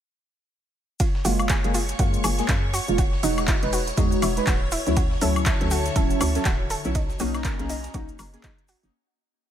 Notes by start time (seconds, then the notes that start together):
1.00 F4 C#5 C#6, kick, closed hi-hat, ride, shaker
1.15 snare
1.25 F#1 G#3 A#3 F4 F#4, open hi-hat, ride, shaker
1.39 closed hi-hat, high woodblock, shaker
1.49 G#4, kick, snare, clap, closed hi-hat, ride, shaker
1.64 F#1 G#3 A#3 G#4, closed hi-hat, ride
1.74 F4, open hi-hat, ride, shaker
1.88 snare, closed hi-hat, shaker
1.99 F#2 G#3 A#3 F4 F#4, kick, closed hi-hat, ride, shaker
2.14 closed hi-hat, shaker
2.24 F#1 G#4, open hi-hat, ride, high woodblock, shaker
2.39 G#3 A#3 G#4, snare, closed hi-hat, shaker
2.48 F#2 F4, kick, snare, clap, closed hi-hat, ride, shaker
2.74 F#4, open hi-hat, shaker
2.88 E1 G#3 A#3 F4, closed hi-hat, shaker
2.98 F#4, kick, closed hi-hat, ride, shaker
3.13 snare
3.23 E1 G#3 D#4 F#4, open hi-hat, ride, shaker
3.37 snare, closed hi-hat, high woodblock, shaker
3.48 E4, kick, snare, clap, closed hi-hat, ride, shaker
3.63 E1 G#3 D#4 B4, snare, closed hi-hat
3.73 F#4, open hi-hat, ride, shaker
3.87 snare, closed hi-hat, shaker
3.97 E2 G#3 D#4 F#4, kick, closed hi-hat, ride, shaker
4.12 closed hi-hat, shaker
4.22 E1 E4, open hi-hat, ride, high woodblock, shaker
4.37 G#3 D#4 B4, snare, closed hi-hat, shaker
4.47 D1 F#4, kick, snare, clap, closed hi-hat, ride, shaker
4.71 E4, open hi-hat, ride, shaker
4.86 D2 F#3 C#4 E4, snare, closed hi-hat, shaker
4.97 D3 F#4 C#5 E5 A5, kick, closed hi-hat, ride, shaker
5.11 snare
5.21 D2 F#3 C#4 E4 A4, open hi-hat, ride, shaker
5.36 closed hi-hat, high woodblock, shaker
5.46 E4, kick, snare, clap, closed hi-hat, ride, shaker
5.61 D2 F#3 C#4 A4, closed hi-hat, ride
5.71 F#4, open hi-hat, ride, shaker
5.86 snare, closed hi-hat, shaker
5.96 D1 F#3 C#4 E4 A4, kick, closed hi-hat, ride, shaker
6.10 closed hi-hat, shaker
6.21 D2 E4, open hi-hat, ride, high woodblock, shaker
6.35 F#3 C#4 A4, snare, closed hi-hat, shaker
6.45 D1 F#4, kick, snare, clap, closed hi-hat, ride, shaker
6.70 A4, open hi-hat, shaker
6.84 B1 F#3 C#4 E4, closed hi-hat, shaker
6.95 C#4 D#4 D#5 A#5, kick, closed hi-hat, ride, shaker
7.10 snare, shaker
7.19 B1 A#3 C#4 D#4 F#4, open hi-hat, ride, shaker
7.34 snare, closed hi-hat, high woodblock, shaker
7.44 A#4, kick, snare, clap, closed hi-hat, ride, shaker
7.59 B1 A#3 C#4 G#4, snare, closed hi-hat
7.69 D#4, open hi-hat, ride, shaker
7.84 snare, closed hi-hat, shaker
7.94 B1 A#3 C#4 D#4 F#4, kick, closed hi-hat, ride, shaker
8.08 closed hi-hat, shaker
8.19 F#1 A#4, open hi-hat, ride, high woodblock, shaker
8.34 A#3 C#4 G#4, snare, closed hi-hat, shaker
8.43 F#1 D#4, kick, snare, clap, closed hi-hat, ride, shaker
8.58 closed hi-hat
8.68 F#4, open hi-hat, ride, shaker
8.83 F#1 A#3 C#4 D#4, snare, shaker